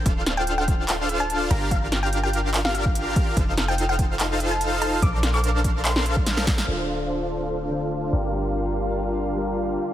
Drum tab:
HH |x-x-x-x-x-x-x-x-|x-x-x-x-x-x-x-x-|x-x-x-x-x-x-x-x-|x-x-x-x-x-x-x-x-|
CP |--------x-------|--------x-------|--------x-------|---x----x-------|
SD |--o-------------|--o------o------|--o-------------|--o------o--oooo|
BD |o-----o---------|o----------o--o-|o-----o---------|o-----o----o--o-|

HH |----------------|----------------|
CP |----------------|----------------|
SD |----------------|----------------|
BD |----------------|----------------|